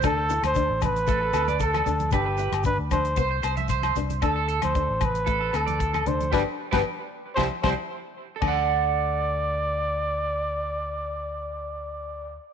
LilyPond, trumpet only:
\new Staff \with { instrumentName = "Trumpet" } { \time 4/4 \key d \mixolydian \tempo 4 = 115 a'8. c''8. b'4. a'4 | g'4 b'8 c''4 r4. | a'8. c''8. b'4 a'4 c''8 | b'16 r8 b'16 r4 c''16 r16 c''16 r4 r16 |
d''1~ | d''1 | }